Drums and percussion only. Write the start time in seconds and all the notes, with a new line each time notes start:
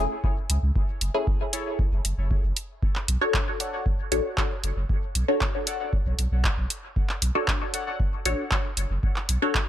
0.24 kick
0.50 closed hi-hat
0.76 kick
1.01 closed hi-hat
1.27 kick
1.53 closed hi-hat
1.79 kick
2.05 closed hi-hat
2.31 kick
2.56 closed hi-hat
2.83 kick
2.96 clap
3.08 closed hi-hat
3.34 kick, clap
3.60 closed hi-hat
3.86 kick
4.12 closed hi-hat
4.38 kick, clap
4.64 closed hi-hat
4.89 kick
5.15 closed hi-hat
5.41 kick, clap
5.67 closed hi-hat
5.93 kick
6.19 closed hi-hat
6.44 kick, clap
6.70 closed hi-hat
6.96 kick
7.09 clap
7.22 closed hi-hat
7.48 kick, clap
7.74 closed hi-hat
8.00 kick
8.25 closed hi-hat
8.51 kick, clap
8.77 closed hi-hat
9.03 kick
9.16 clap
9.29 closed hi-hat
9.55 kick, clap